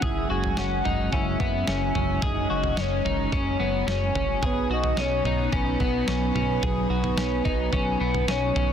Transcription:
Already playing: string machine F#3
0.02 analog synth bass F#1, string machine G#3 C#4, clean electric guitar G#4, soft synth lead E5, kick, floor tom
0.30 analog synth bass F#1, clean electric guitar F#4, soft synth lead G#5
0.44 floor tom
0.57 analog synth bass F#1, clean electric guitar C#4, soft synth lead F#5, snare
0.85 analog synth bass F#1, clean electric guitar D#4, floor tom
1.12 analog synth bass F#1, clean electric guitar C#4, soft synth lead E5, kick, floor tom
1.40 analog synth bass F#1, clean electric guitar B3, kick
1.67 analog synth bass F#1, clean electric guitar C#4, snare
1.95 analog synth bass F#1, clean electric guitar C#4, floor tom
2.22 analog synth bass F#1, clean electric guitar G#4, soft synth lead D#5, kick, floor tom
2.50 analog synth bass F#1, clean electric guitar F#4
2.63 floor tom
2.77 analog synth bass F#1, clean electric guitar C#4, soft synth lead C#5, snare
3.05 analog synth bass F#1, clean electric guitar D#4, floor tom
3.32 analog synth bass F#1, clean electric guitar C#4, kick, floor tom
3.60 analog synth bass F#1, clean electric guitar B3
3.87 analog synth bass F#1, clean electric guitar C#4, soft synth lead C#5, snare
4.15 analog synth bass F#1, clean electric guitar C#4, floor tom
4.43 analog synth bass B1, string machine F#3 B3 D#4, clean electric guitar G#4, soft synth lead B4, kick, floor tom
4.70 analog synth bass B1, clean electric guitar F#4, soft synth lead D#5
4.84 floor tom
4.97 analog synth bass B1, clean electric guitar C#4, soft synth lead C#5, snare
5.24 analog synth bass B1, clean electric guitar D#4, floor tom
5.53 analog synth bass B1, clean electric guitar C#4, soft synth lead B4, kick, floor tom
5.80 analog synth bass B1, clean electric guitar B3, kick
6.08 analog synth bass B1, clean electric guitar C#4, snare
6.35 analog synth bass B1, clean electric guitar C#4, floor tom
6.63 analog synth bass B1, clean electric guitar G#4, kick, floor tom
6.90 analog synth bass B1, clean electric guitar F#4
7.04 floor tom
7.17 analog synth bass B1, clean electric guitar C#4, snare
7.45 analog synth bass B1, clean electric guitar D#4, kick
7.73 analog synth bass B1, clean electric guitar C#4, kick, floor tom
8.00 analog synth bass B1, clean electric guitar B3
8.14 floor tom
8.28 analog synth bass B1, clean electric guitar C#4, soft synth lead C#5, snare
8.56 analog synth bass B1, clean electric guitar C#4, floor tom

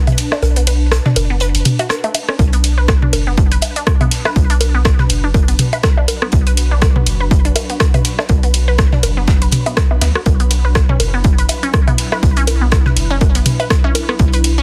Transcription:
Already playing: ambient pad D4 B4 A5
0.07 closed hi-hat, mid tom, high bongo
0.17 snare, closed hi-hat, ride
0.31 synth pluck D4, cross-stick, snare, high bongo
0.42 sub bass B1, closed hi-hat, low bongo
0.56 synth pluck B3, closed hi-hat
0.67 synth pluck B4, closed hi-hat, ride
0.92 cross-stick, snare, closed hi-hat
1.05 synth pluck D4, snare, mid tom
1.16 sub bass F#1, closed hi-hat, ride, low bongo
1.30 synth pluck B3
1.40 synth pluck B4, closed hi-hat
1.55 sub bass F#1, closed hi-hat, ride
1.65 closed hi-hat, mid tom, ride
1.79 synth pluck F#4, closed hi-hat, high bongo
1.89 cross-stick, snare, closed hi-hat, low bongo
2.04 synth pluck A3, closed hi-hat, high bongo
2.14 closed hi-hat, ride, high bongo
2.29 synth pluck C#4, cross-stick
2.39 sub bass B1, synth drone F#3 F#4, kick, closed hi-hat, low bongo
2.53 synth pluck B3, closed hi-hat
2.64 closed hi-hat, ride
2.78 synth pluck B4
2.88 kick, cross-stick, snare, closed hi-hat
3.02 synth pluck D4, mid tom
3.13 sub bass F#1, closed hi-hat, ride, low bongo
3.27 synth pluck B3
3.37 kick, closed hi-hat
3.51 sub bass F#1, synth pluck B4, closed hi-hat
3.62 closed hi-hat, ride, high bongo
3.76 synth pluck D4, closed hi-hat
3.87 kick, cross-stick, closed hi-hat, low bongo
3.98 synth pluck B3, ambient pad B5, closed hi-hat, mid tom, high bongo
4.11 snare, closed hi-hat, ride
4.25 synth pluck B4, cross-stick, snare, high bongo
4.36 sub bass B1, kick, closed hi-hat
4.50 synth pluck D4, closed hi-hat
4.61 closed hi-hat, ride, low bongo
4.75 synth pluck B3
4.85 kick, cross-stick, snare, closed hi-hat
4.98 synth pluck B4, snare, mid tom
5.09 sub bass F#1, closed hi-hat, ride
5.24 synth pluck D4
5.34 kick, closed hi-hat, low bongo
5.48 sub bass F#1, synth pluck B3, closed hi-hat, ride
5.59 closed hi-hat, mid tom, ride
5.73 synth pluck B4, closed hi-hat, high bongo
5.83 kick, cross-stick, snare, closed hi-hat
5.97 synth pluck D4, high bongo
6.08 closed hi-hat, ride, low bongo
6.22 synth pluck B3, cross-stick
6.32 sub bass B1, kick, closed hi-hat
6.47 synth pluck B4, closed hi-hat
6.57 closed hi-hat, ride
6.71 synth pluck D4
6.82 kick, cross-stick, snare, closed hi-hat, low bongo
6.96 synth pluck B3, mid tom
7.06 sub bass F#1, closed hi-hat, ride
7.20 synth pluck B4
7.31 kick, closed hi-hat
7.45 sub bass F#1, synth pluck D4, closed hi-hat
7.56 closed hi-hat, ride, high bongo, low bongo
7.70 synth pluck B3, closed hi-hat
7.80 kick, cross-stick, snare, closed hi-hat
7.94 synth pluck B4, closed hi-hat, mid tom, high bongo
8.04 snare, closed hi-hat, ride
8.19 synth pluck D4, cross-stick, snare, high bongo
8.29 sub bass B1, kick, closed hi-hat, low bongo
8.43 synth pluck B3, closed hi-hat
8.54 closed hi-hat, ride
8.68 synth pluck B4
8.78 kick, cross-stick, snare, closed hi-hat
8.92 synth pluck D4, snare, mid tom
9.03 sub bass F#1, closed hi-hat, ride, low bongo
9.17 synth pluck B3
9.28 kick, snare, closed hi-hat
9.42 sub bass F#1, synth pluck B4, closed hi-hat, ride
9.51 closed hi-hat, mid tom, ride
9.66 synth pluck B3, closed hi-hat, high bongo
9.77 kick, cross-stick, snare, closed hi-hat, low bongo
9.91 synth pluck B3, high bongo
10.01 sub bass D2, synth pluck B3, snare, closed hi-hat, ride, high bongo
10.15 synth pluck F#4, cross-stick
10.26 sub bass B1, synth drone E4, kick, closed hi-hat, low bongo
10.40 synth pluck B3, closed hi-hat
10.51 closed hi-hat, ride
10.65 synth pluck B4
10.75 kick, cross-stick, snare, closed hi-hat
10.89 synth pluck C#4, mid tom
11.00 sub bass F#1, closed hi-hat, ride, low bongo
11.14 synth pluck B3
11.24 kick, closed hi-hat
11.38 sub bass F#1, synth pluck B4, closed hi-hat
11.49 closed hi-hat, ride, high bongo
11.63 synth pluck C#4, closed hi-hat
11.73 kick, cross-stick, closed hi-hat, low bongo
11.87 synth pluck B3, closed hi-hat, mid tom, high bongo
11.97 snare, closed hi-hat, ride
12.11 synth pluck B4, cross-stick, snare, high bongo
12.23 sub bass B1, kick, closed hi-hat
12.36 synth pluck C#4, closed hi-hat
12.47 closed hi-hat, ride, low bongo
12.61 synth pluck B3
12.72 kick, cross-stick, snare, closed hi-hat
12.85 synth pluck B4, snare, mid tom
12.96 sub bass F#1, closed hi-hat, ride
13.11 synth pluck C#4
13.21 kick, closed hi-hat, low bongo
13.35 sub bass F#1, synth pluck B3, closed hi-hat, ride
13.46 closed hi-hat, mid tom, ride
13.60 synth pluck B4, closed hi-hat, high bongo
13.70 kick, cross-stick, snare, closed hi-hat
13.84 synth pluck C#4, high bongo
13.95 closed hi-hat, ride, low bongo
14.09 synth pluck B3, cross-stick
14.19 sub bass B1, kick, closed hi-hat
14.32 synth pluck B4, closed hi-hat
14.44 closed hi-hat, ride
14.58 synth pluck C#4

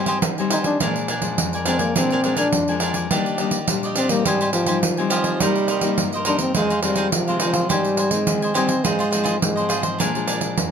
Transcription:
Already playing: nylon-string guitar G#2 G3 C4 D#4
0.06 cavaquinho G4 C5 D#5 G#5, pandeiro
0.22 nylon-string guitar D#3, pandeiro
0.38 nylon-string guitar G3 C4 D#4, cavaquinho C5 D#5 G#5, pandeiro
0.51 trombone D#4, cavaquinho G4 C5 D#5 G#5, pandeiro
0.64 trombone D4, cavaquinho C5 D#5 G#5, pandeiro
0.80 nylon-string guitar A#2 F3 G#3 D4, cavaquinho D4 A#4 D5 G#5, pandeiro
0.96 pandeiro
1.08 cavaquinho D4 A#4 D5 G#5, pandeiro
1.22 nylon-string guitar F3 G#3 D4, pandeiro
1.38 nylon-string guitar F2, pandeiro
1.53 cavaquinho A#4 D5 G#5, pandeiro
1.65 nylon-string guitar F3 G#3 D4, trombone C4, cavaquinho D4 A#4 D5 G#5, pandeiro
1.79 trombone A#3, cavaquinho A#4 D5 G#5, pandeiro
1.96 nylon-string guitar A#2 F3 G#3 D4, trombone C4, cavaquinho D4 A#4 D5 G#5, pandeiro
2.11 cavaquinho D4 A#4 D5 G#5, pandeiro
2.24 nylon-string guitar F3 G#3 D4, cavaquinho D4 A#4 D5 G#5, pandeiro
2.37 cavaquinho D4 A#4 D5 G#5, trombone D4, pandeiro
2.53 nylon-string guitar F2, pandeiro
2.68 nylon-string guitar F3 G#3 D4, cavaquinho A#4 D5 G#5, pandeiro
2.80 cavaquinho D4 A#4 D5 G#5, pandeiro
2.94 cavaquinho A#4 D5 G#5, pandeiro
3.11 nylon-string guitar D#3 G3 A#3 D4, cavaquinho D4 G4 D5 D#5, pandeiro
3.26 pandeiro
3.38 nylon-string guitar G3 A#3 D4, cavaquinho G4 D5 D#5, pandeiro
3.51 pandeiro
3.68 nylon-string guitar A#2 G3 A#3 D4, pandeiro
3.83 cavaquinho G4 D5 D#5, pandeiro
3.96 trombone C4, cavaquinho D4 G4 D5 D#5, pandeiro
4.09 nylon-string guitar G3 C4 D#4, trombone A#3, cavaquinho G4 D5 D#5, pandeiro
4.25 nylon-string guitar G#2, trombone G3, cavaquinho G4 C5 D#5 G#5, pandeiro
4.41 cavaquinho G4 C5 D#5 G#5, pandeiro
4.53 trombone F3, cavaquinho G4 C5 D#5 G#5, pandeiro
4.66 nylon-string guitar G3 C4 D#4, cavaquinho G4 C5 D#5 G#5, pandeiro
4.83 nylon-string guitar D#3, pandeiro
4.97 nylon-string guitar G3 C4 D#4, cavaquinho C5 D#5 G#5, pandeiro
5.10 tenor saxophone F3, cavaquinho G4 C5 D#5 G#5, pandeiro
5.24 cavaquinho C5 D#5 G#5, pandeiro
5.40 nylon-string guitar C3 G3 A#3 D#4, tenor saxophone G3, cavaquinho D#4 A#4 C5 D#5, pandeiro
5.56 pandeiro
5.68 cavaquinho D#4 A#4 C5 D#5, pandeiro
5.81 nylon-string guitar G3 A#3 D#4, pandeiro
5.98 nylon-string guitar G2, pandeiro
6.12 cavaquinho C5 D#5, pandeiro
6.16 cavaquinho A#4
6.25 nylon-string guitar G3 A#3 D#4, trombone D4, cavaquinho D#4 A#4 C5 D#5, pandeiro
6.39 trombone C4, cavaquinho A#4 D#5, pandeiro
6.55 nylon-string guitar F2 D#3 G#3 C4, trombone G#3, cavaquinho D#4 G#4 C5 F5, pandeiro
6.70 cavaquinho D#4 G#4 C5 F5, pandeiro
6.82 nylon-string guitar D#3 G#3 C4, trombone G3, cavaquinho D#4 G#4 C5 F5, pandeiro
6.95 cavaquinho D#4 G#4 C5 F5, pandeiro
7.12 nylon-string guitar C3, trombone F3, pandeiro
7.27 nylon-string guitar D#3 G#3 C4, cavaquinho G#4 C5 F5, pandeiro
7.40 trombone F3, cavaquinho D#4 G#4 C5 F5, pandeiro
7.53 cavaquinho G#4 C5 F5, pandeiro
7.69 nylon-string guitar G#2 G3 C4 D#4, trombone G3, cavaquinho G4 C5 D#5 G#5, pandeiro
7.84 pandeiro
7.97 cavaquinho C5 D#5 G#5, pandeiro
8.11 trombone G#3, nylon-string guitar C4 D#4, pandeiro
8.27 nylon-string guitar D#3, pandeiro
8.42 cavaquinho C5 D#5 G#5, pandeiro
8.54 nylon-string guitar G3 C4 D#4, trombone C4, cavaquinho G4 C5 D#5 G#5, pandeiro
8.68 cavaquinho C5 D#5 G#5, pandeiro
8.84 nylon-string guitar G#2 F3 C4 D#4, trombone G#3, cavaquinho F4 G#4 C5 D#5, pandeiro
8.99 cavaquinho F4 G#4 C5 D#5, pandeiro
9.11 nylon-string guitar F3 C4 D#4, cavaquinho F4 G#4 C5 D#5, pandeiro
9.24 cavaquinho F4 G#4 C5 D#5, pandeiro
9.41 nylon-string guitar G#2, trombone G#3, pandeiro
9.56 nylon-string guitar F3 C4 D#4, cavaquinho G#4 C5 D#5, pandeiro
9.69 cavaquinho F4 G#4 C5 D#5, pandeiro
9.82 cavaquinho G#4 C5 D#5, pandeiro
9.99 nylon-string guitar A#2 F3 G#3 D4, cavaquinho D4 A#4 D5 G#5, pandeiro
10.15 nylon-string guitar F3 G#3 D4, pandeiro
10.27 cavaquinho D4 A#4 D5 G#5, pandeiro
10.41 pandeiro
10.58 nylon-string guitar F2, pandeiro

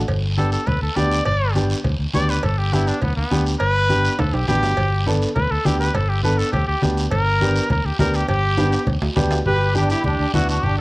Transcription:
0.08 fingered electric bass G1, cowbell, high conga, low conga, long guiro
0.37 upright piano B3 D4 G4, trumpet A4, high conga, short guiro
0.52 trumpet A4, short guiro
0.67 fingered electric bass D2, trumpet B4, cowbell, high conga, low conga, long guiro
0.82 fingered electric bass D2, trumpet A4
0.96 fingered electric bass D2, upright piano B3 D4 G4, trumpet D5, high conga, low timbale, short guiro
1.11 short guiro
1.25 fingered electric bass G1, trumpet D5, cowbell, high conga, low conga, long guiro
1.55 upright piano B3 D4 G4, high conga, short guiro
1.70 short guiro
1.84 fingered electric bass D2, cowbell, high conga, low conga, long guiro
1.99 fingered electric bass D2
2.14 fingered electric bass D2, upright piano B3 D4 G4, trumpet D5, high conga, low timbale, short guiro
2.29 trumpet B4, short guiro
2.43 fingered electric bass G1, trumpet A4, cowbell, high conga, low conga, long guiro
2.58 trumpet G4
2.72 upright piano B3 D4 G4, trumpet E4, high conga, short guiro
2.87 trumpet D4, short guiro
3.02 fingered electric bass D2, trumpet B3, cowbell, high conga, low conga, long guiro
3.16 fingered electric bass D2, trumpet B3
3.30 fingered electric bass D2, upright piano B3 D4 G4, high conga, short guiro
3.46 short guiro
3.60 fingered electric bass G1, trumpet B4, cowbell, high conga, long guiro
3.89 upright piano B3 D4 G4, high conga, short guiro
4.05 short guiro
4.19 fingered electric bass D2, trumpet A4, cowbell, high conga, low conga, high timbale, long guiro
4.33 fingered electric bass B1, trumpet G4, high timbale
4.48 fingered electric bass A1, upright piano B3 D4 G4, trumpet G4, high conga, low timbale, short guiro
4.63 fingered electric bass G1, low timbale, short guiro
4.77 fingered electric bass G1, cowbell, high conga, low conga, long guiro
5.06 upright piano B3 D4 A4, high conga, short guiro
5.22 short guiro
5.35 fingered electric bass D2, trumpet B4, cowbell, high conga, low conga, long guiro
5.51 fingered electric bass D2, trumpet A4
5.64 fingered electric bass D2, upright piano B3 D4 G4, trumpet G4, high conga, low timbale, short guiro
5.80 trumpet B4, short guiro
5.94 fingered electric bass G1, trumpet A4, cowbell, high conga, low conga, long guiro
6.09 trumpet G4
6.23 upright piano B3 D4 A4, trumpet B4, high conga, short guiro
6.38 trumpet A4, short guiro
6.52 fingered electric bass D2, trumpet G4, cowbell, high conga, low conga, long guiro
6.67 fingered electric bass D2, trumpet G4
6.82 fingered electric bass D2, upright piano B3 D4 G4, high conga, low timbale, short guiro
6.97 short guiro
7.11 fingered electric bass G1, trumpet A#4, cowbell, high conga, low conga, long guiro
7.41 upright piano B3 D4 G4, high conga, short guiro
7.56 short guiro
7.70 fingered electric bass D2, trumpet A#4, cowbell, high conga, low conga, long guiro
7.85 fingered electric bass D2, trumpet G4
7.99 fingered electric bass D2, upright piano B3 D4 G4, trumpet A#4, high conga, low conga, low timbale, short guiro
8.14 trumpet G4, short guiro
8.28 fingered electric bass G1, trumpet G4, cowbell, high conga, low conga, long guiro
8.58 upright piano B3 D4 G4, high conga, high timbale, short guiro
8.72 high timbale, short guiro
8.87 fingered electric bass D2, cowbell, high conga, low conga, long guiro
9.02 fingered electric bass D2, low timbale
9.16 fingered electric bass D2, upright piano B3 D4 G4, high conga, low conga, low timbale, short guiro
9.31 low timbale, short guiro
9.46 fingered electric bass G1, accordion G4, trumpet B4, high conga, low conga, long guiro
9.74 upright piano B3 D4 G4, accordion D4, trumpet G4, high conga, short guiro
9.90 accordion E4, trumpet G4, short guiro
10.04 fingered electric bass D2, accordion D4, trumpet G4, high conga, low conga, long guiro
10.19 fingered electric bass D2
10.34 fingered electric bass D2, upright piano B3 D4 E4, accordion D4, trumpet F#4, high conga, low conga, short guiro
10.49 accordion D4, trumpet F#4, short guiro
10.63 fingered electric bass G1, accordion D4, trumpet G4, high conga, low conga, long guiro

